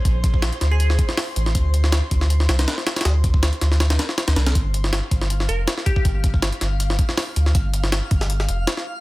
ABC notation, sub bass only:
X:1
M:4/4
L:1/16
Q:"Swing 16ths" 1/4=160
K:Gm
V:1 name="Sub bass" clef=bass
B,,,4- B,,, z D,,4 z4 A,,,2 | D,,4- D,, z D,,4 C,,2 z4 | D,,4- D,, z D,,4 z3 D,, C,,2 | G,,,4- G,,, z G,,,4 F,,,2 z4 |
G,,,4- G,,, z G,,,4 z4 D,,2 | G,,,4- G,,, z G,,,4 F,,,2 z4 |]